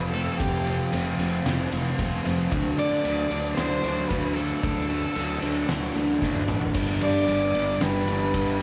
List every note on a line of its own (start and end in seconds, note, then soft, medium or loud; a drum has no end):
0.00 0.28 F1 medium
0.00 0.12 F3 medium
0.00 0.38 F3 medium
0.00 0.15 A3 medium
0.00 1.72 A3 medium
0.00 0.13 C4 medium
0.00 0.12 F4 medium
0.00 0.66 F4 medium
0.12 0.92 F3 medium
0.12 0.40 A3 medium
0.12 0.40 C4 medium
0.12 0.40 F4 medium
0.12 0.40 A4 medium
0.12 ride medium
0.38 0.81 F1 loud
0.38 1.73 F2 medium
0.38 0.91 F3 loud
0.38 0.68 A3 loud
0.38 0.66 C4 loud
0.38 0.65 F4 loud
0.38 0.92 G4 medium
0.38 kick loud
0.38 ride loud
0.66 1.99 C3 medium
0.66 0.92 A3 medium
0.66 0.93 C4 medium
0.66 0.93 F4 medium
0.66 ride medium
0.92 1.13 F1 loud
0.92 1.44 F3 loud
0.92 1.20 A3 loud
0.92 1.19 C4 loud
0.92 1.17 F4 loud
0.92 ride loud
1.19 1.39 F1 loud
1.19 1.46 A3 medium
1.19 1.46 C4 medium
1.19 1.46 F4 medium
1.19 ride medium
1.45 1.66 F1 loud
1.45 1.73 F3 medium
1.45 1.73 A3 medium
1.45 1.71 C4 medium
1.45 1.70 F4 medium
1.45 snare loud
1.45 ride loud
1.71 1.92 F1 loud
1.71 1.97 F3 medium
1.71 1.99 A3 medium
1.71 1.99 C4 medium
1.71 1.99 F4 loud
1.71 ride medium
1.98 2.19 F1 loud
1.98 2.50 F3 medium
1.98 2.26 A3 medium
1.98 2.25 C4 medium
1.98 2.23 F4 medium
1.98 kick medium
1.98 ride loud
2.24 2.45 F1 loud
2.24 2.51 F3 medium
2.24 2.51 A3 medium
2.24 2.50 C4 medium
2.24 2.50 F4 medium
2.24 ride medium
2.50 2.72 D2 loud
2.50 3.03 D3 loud
2.50 2.79 F#3 loud
2.50 2.78 A3 loud
2.50 2.77 D4 loud
2.50 kick loud
2.50 ride loud
2.77 2.98 D3 loud
2.77 3.04 F#3 medium
2.77 3.05 A3 medium
2.77 3.05 D4 medium
2.77 3.54 D5 loud
2.77 ride medium
2.92 snare soft
3.03 3.25 D2 loud
3.03 3.57 D3 medium
3.03 3.32 F#3 medium
3.03 3.31 A3 loud
3.03 3.30 D4 medium
3.03 ride loud
3.30 3.52 D2 loud
3.30 3.57 F#3 medium
3.30 3.57 A3 medium
3.30 3.59 D4 medium
3.30 ride medium
3.56 3.78 D2 medium
3.56 3.84 D3 medium
3.56 3.84 F#3 medium
3.56 3.83 A3 medium
3.56 3.83 D4 medium
3.56 4.90 F#4 medium
3.56 4.10 C5 loud
3.56 snare loud
3.56 ride loud
3.83 4.05 D2 loud
3.83 4.08 D3 medium
3.83 4.09 F#3 medium
3.83 4.10 A3 medium
3.83 4.11 D4 loud
3.83 ride medium
4.08 4.52 D2 loud
4.08 4.61 D3 medium
4.08 4.37 F#3 medium
4.08 4.37 A3 medium
4.08 4.36 D4 medium
4.08 4.37 B4 loud
4.08 kick medium
4.08 ride loud
4.35 4.61 D3 medium
4.35 4.62 F#3 medium
4.35 4.63 A3 medium
4.35 4.64 D4 medium
4.35 6.21 A4 medium
4.35 ride medium
4.62 5.04 D2 loud
4.62 5.14 D3 medium
4.62 4.90 F#3 loud
4.62 4.89 A3 loud
4.62 4.88 D4 loud
4.62 kick loud
4.62 ride loud
4.89 5.15 F#3 medium
4.89 5.16 A3 medium
4.89 5.17 D4 medium
4.89 ride medium
5.15 5.37 D2 medium
5.15 5.67 D3 medium
5.15 5.43 F#3 loud
5.15 5.41 A3 loud
5.15 5.41 D4 loud
5.15 ride loud
5.41 5.63 D2 medium
5.41 5.67 F#3 medium
5.41 5.68 A3 medium
5.41 5.70 D4 medium
5.41 ride medium
5.68 5.89 D2 loud
5.68 5.96 D3 medium
5.68 5.95 F#3 medium
5.68 5.94 A3 medium
5.68 5.94 D4 medium
5.68 6.75 F#4 medium
5.68 snare loud
5.68 ride loud
5.94 6.16 D2 medium
5.94 6.20 D3 medium
5.94 6.21 F#3 medium
5.94 6.21 A3 medium
5.94 6.23 D4 medium
5.94 ride medium
6.21 6.43 D2 medium
6.21 6.73 D3 medium
6.21 6.49 F#3 medium
6.21 6.48 A3 medium
6.21 6.47 D4 medium
6.21 kick medium
6.21 snare medium
6.35 high tom medium
6.48 6.69 A1 loud
6.48 6.75 D3 medium
6.48 6.74 F#3 medium
6.48 6.73 A3 medium
6.48 6.76 D4 medium
6.48 mid tom loud
6.61 floor tom loud
6.74 6.95 G1 medium
6.74 7.27 G2 medium
6.74 7.27 D3 loud
6.74 7.03 G3 medium
6.74 7.01 B3 loud
6.74 7.00 D4 loud
6.74 kick loud
6.74 ride loud
6.74 crash loud
7.01 7.22 G2 loud
7.01 8.33 D3 medium
7.01 7.28 G3 medium
7.01 7.28 B3 medium
7.01 7.29 D4 medium
7.01 7.85 D5 loud
7.01 ride medium
7.27 7.48 G1 medium
7.27 8.09 G2 medium
7.27 7.79 D3 loud
7.27 7.55 G3 loud
7.27 7.54 B3 medium
7.27 7.53 D4 loud
7.27 ride loud
7.53 7.75 G1 medium
7.53 7.80 G3 medium
7.53 7.80 B3 medium
7.53 7.81 D4 medium
7.53 ride medium
7.80 8.01 G1 loud
7.80 8.07 D3 medium
7.80 8.08 G3 medium
7.80 8.06 B3 medium
7.80 8.06 D4 medium
7.80 8.62 G4 medium
7.80 8.62 B4 loud
7.80 snare loud
7.80 ride loud
8.07 8.28 G1 loud
8.07 8.61 G2 medium
8.07 8.32 D3 medium
8.07 8.34 G3 medium
8.07 8.34 B3 medium
8.07 8.35 D4 medium
8.07 ride medium
8.34 8.62 G1 medium
8.34 8.62 D3 medium
8.34 8.62 G3 medium
8.34 8.60 B3 medium
8.34 8.58 D4 medium
8.34 kick medium
8.34 ride loud